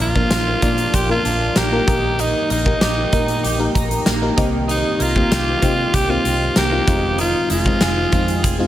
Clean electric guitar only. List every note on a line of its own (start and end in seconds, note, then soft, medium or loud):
0.00 1.87 F3 medium
0.00 1.56 A#3 medium
0.31 0.93 F4 medium
0.62 1.24 D4 medium
0.94 1.94 F4 medium
1.25 1.94 D4 medium
1.56 2.50 A#3 medium
1.88 2.19 D#3 medium
2.19 4.37 D#3 medium
2.50 4.05 A#3 medium
2.81 3.43 G4 medium
3.13 3.74 D#4 medium
3.43 5.30 G4 medium
3.75 5.61 D#4 medium
4.06 4.99 A#3 medium
4.37 4.68 D#3 medium
4.68 6.87 D#3 medium
4.99 6.55 A#3 medium
5.31 5.92 G4 medium
5.62 6.24 C4 medium
5.93 6.94 G4 medium
6.25 8.12 C4 medium
6.56 6.94 A#3 medium
6.87 7.17 D#3 medium
7.18 8.67 D#3 medium
7.50 8.67 G#3 medium
7.81 8.42 G#4 medium
8.12 8.67 C4 medium
8.43 8.67 G#4 medium